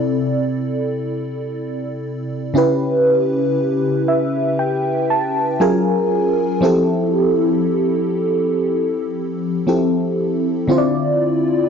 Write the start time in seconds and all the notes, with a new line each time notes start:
Already playing: C3 C4 E4 A4 D5
2.54 C#3 C#4 E4 G4 B4
4.08 E5
4.59 G5
5.10 A5
5.60 F#3 C#4 F4 G#4 A#4 G#5
6.61 F3 C4 E4 G4 A4
9.67 F3 C4 E4 G4 A4
10.68 D3 C4 E4 F4
10.72 C5
10.78 D5